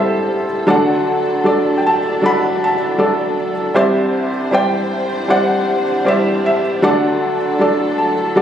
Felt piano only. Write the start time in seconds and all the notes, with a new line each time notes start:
Already playing: A1 A2 G3 E4 A4 C5 E5 F#5 G5
0.67 D2 D3 F#3 D4 A4 D5 F#5
0.72 A4
1.44 F#3 D4 A4 D5
1.78 G5
1.87 A5
2.22 F#3 D4 A4 D5 B5
2.26 F#5
2.64 A5
2.98 F#3 D4 A4 D5
3.74 C2 C3 G3 E4 G4 C5 D5
3.79 E5
4.51 G3 E4 C5 D5 G5
5.28 G3 E4 C5 D5 F#5
6.05 G3 E4 C5 D5 E5
6.46 E5
6.82 D2 D3 F#3 D4 A4 D5 F#5
7.59 F#3 D4 A4 D5
7.98 A5
8.36 F#3 D4 A4 D5 F#5